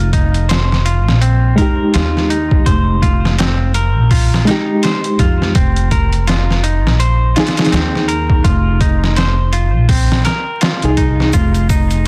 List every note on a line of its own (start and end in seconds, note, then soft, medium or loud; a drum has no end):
0.00 1.07 F1 medium
0.00 0.12 F4 medium
0.13 0.48 D#4 medium
0.13 kick medium
0.13 closed hi-hat medium
0.34 closed hi-hat soft
0.49 0.84 C5 medium
0.49 snare loud
0.49 closed hi-hat medium
0.72 snare soft
0.85 1.19 F4 medium
0.85 closed hi-hat medium
1.07 1.55 A#1 medium
1.07 snare soft
1.21 1.55 C4 medium
1.21 closed hi-hat medium
1.56 4.42 G#3 medium
1.56 4.44 D#4 medium
1.56 1.92 A#4 medium
1.56 kick medium
1.56 closed hi-hat medium
1.61 4.45 G4 medium
1.94 2.64 D#2 medium
1.94 2.29 F4 medium
1.94 snare loud
1.94 closed hi-hat medium
2.17 snare soft
2.30 2.65 D#4 medium
2.30 closed hi-hat medium
2.51 kick medium
2.66 3.96 F1 medium
2.66 3.01 C5 medium
2.66 kick loud
2.66 closed hi-hat medium
3.02 3.35 F4 medium
3.02 kick medium
3.02 closed hi-hat medium
3.25 snare soft
3.38 3.72 C4 medium
3.38 snare loud
3.38 closed hi-hat medium
3.74 4.09 A#4 medium
3.74 closed hi-hat medium
3.96 4.44 A#1 medium
4.11 4.45 F4 medium
4.11 kick loud
4.11 open hi-hat medium
4.34 snare soft
4.45 5.53 G#3 medium
4.45 4.82 D#4 medium
4.45 5.54 D#4 medium
4.45 snare medium
4.45 closed hi-hat medium
4.51 5.55 G4 medium
4.83 5.18 C5 medium
4.83 snare loud
4.83 closed hi-hat medium
5.04 closed hi-hat soft
5.19 5.52 F2 medium
5.19 5.52 F4 medium
5.19 kick medium
5.19 closed hi-hat medium
5.42 snare soft
5.55 6.86 F1 medium
5.55 5.89 C4 medium
5.55 kick loud
5.55 closed hi-hat medium
5.76 closed hi-hat soft
5.91 6.26 A#4 medium
5.91 kick medium
5.91 closed hi-hat medium
6.13 closed hi-hat soft
6.27 6.62 F4 medium
6.27 snare loud
6.27 closed hi-hat medium
6.51 snare soft
6.63 6.98 D#4 medium
6.63 closed hi-hat medium
6.86 7.33 A#1 medium
6.86 snare soft
7.00 7.34 C5 medium
7.00 closed hi-hat medium
7.36 10.22 D#4 medium
7.36 7.69 F4 medium
7.36 10.23 G#4 medium
7.36 snare medium
7.36 closed hi-hat medium
7.47 snare medium
7.47 closed hi-hat medium
7.57 snare medium
7.57 closed hi-hat medium
7.65 snare medium
7.65 closed hi-hat medium
7.72 8.42 D#2 medium
7.72 8.05 C4 medium
7.72 snare loud
7.72 closed hi-hat medium
7.95 snare soft
8.08 8.43 A#4 medium
8.08 closed hi-hat medium
8.30 kick medium
8.44 9.74 F1 medium
8.44 8.79 F4 medium
8.44 kick loud
8.44 closed hi-hat medium
8.81 9.15 D#4 medium
8.81 kick medium
8.81 closed hi-hat medium
9.04 snare soft
9.16 9.51 C5 medium
9.16 snare loud
9.16 closed hi-hat medium
9.53 9.86 F4 medium
9.53 closed hi-hat medium
9.74 10.22 A#1 medium
9.89 10.22 C4 medium
9.89 kick loud
9.89 open hi-hat medium
10.12 snare soft
10.25 10.60 A#4 medium
10.25 snare soft
10.25 closed hi-hat medium
10.61 10.96 F4 medium
10.61 snare loud
10.61 closed hi-hat medium
10.82 11.31 C2 medium
10.82 11.32 D#4 medium
10.82 11.33 G#4 medium
10.82 closed hi-hat soft
10.97 11.32 D#4 medium
10.97 kick medium
10.97 closed hi-hat medium
11.20 snare soft
11.33 12.07 F1 medium
11.33 11.68 F4 medium
11.33 kick loud
11.33 closed hi-hat medium
11.33 shaker medium
11.54 closed hi-hat soft
11.54 shaker soft
11.69 12.04 D#4 medium
11.69 kick medium
11.69 closed hi-hat medium
11.69 shaker medium
11.90 closed hi-hat soft
11.90 shaker soft